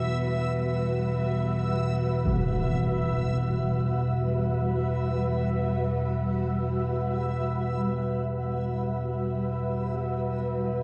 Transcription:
Already playing: synth drone E2 B2, ambient pad G3 F#4 B4 E5, synth texture E5
2.25 impact

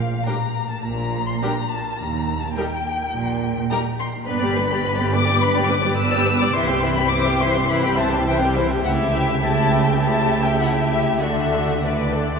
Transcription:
Already playing: double bass section A#1, cello section A#2, violin section F5
0.26 viola section G3 D4, violin section G4 A#4 A#5
0.69 violin section A5
0.84 double bass section A#1, cello section A#2, violin section A#5
1.28 violin section C6
1.42 viola section G3 D4, violin section G4 A#4 A#5
1.71 violin section A5
2.00 cello section D#2, double bass section D#2, violin section A#5
2.42 violin section A5
2.56 viola section G3 D#4, violin section G4 A#4 G5
3.14 double bass section A#1, cello section A#2
3.70 viola section G3 D#4, violin section G4 A#4 A#5
3.99 violin section C6
4.26 double bass section G1, cello section G2, viola section B3 D4, violin section B4 B5
4.41 viola section G3 B3, violin section G4 D5
4.55 viola section B3 D4, violin section B4
4.70 viola section G3 B3, violin section G4 D5
4.84 viola section B3 D4, violin section B4
4.98 viola section G3 B3, violin section G4 D5
5.12 viola section B3 D4, violin section B4 D6
5.26 viola section G3 B3, violin section G4 D5
5.40 viola section B3 D4, violin section B4 B5
5.55 viola section G3 B3, violin section G4 D5
5.68 viola section B3 D4, violin section B4 D6
5.83 viola section G3 B3, violin section G4 D5
5.97 viola section B3 D4, violin section B4 E6
6.12 viola section G3 B3, violin section G4 D5
6.26 viola section B3 D4, violin section B4
6.40 viola section G3 B3, violin section G4 D5 D6
6.53 double bass section C2, cello section C3, viola section E3 E4, violin section C5 E5 C6
6.69 viola section G3 C4, violin section G4 G5
6.83 viola section E3 E4, violin section C5 E5 B5
6.98 viola section G3 C4, violin section G4 G5
7.11 viola section E3 E4, violin section C5 E5 D6
7.27 viola section G3 C4, violin section G4 G5
7.41 viola section E3 E4, violin section C5 E5 C6
7.55 viola section G3 C4, violin section G4 G5
7.69 viola section E3 E4, violin section C5 E5 B5
7.84 viola section G3 C4, violin section G4 G5
7.97 viola section E3 E4, violin section C5 E5 A5
8.11 viola section G3 C4, violin section G4 G5
8.26 viola section E3 E4, violin section C5 E5 G5
8.41 viola section G3 C4, violin section G4 G5
8.55 viola section E3 E4, violin section C5 E5
8.69 viola section G3 C4, violin section G4 G5
8.83 double bass section C#2, cello section C#3, viola section A3 E4, violin section G4 E5 F#5
9.13 violin section E5
9.41 viola section A3 E4, violin section G4 E5 A5
9.85 violin section G5
10.00 viola section A3 E4, violin section G4 E5 A5
10.45 violin section G5
10.60 violin section F#5
10.90 violin section E5
11.21 double bass section D2, cello section D3, viola section A3 D4, violin section F#4 A4 E5
11.84 viola section A3 D4, violin section B4 D5
12.16 violin section A4

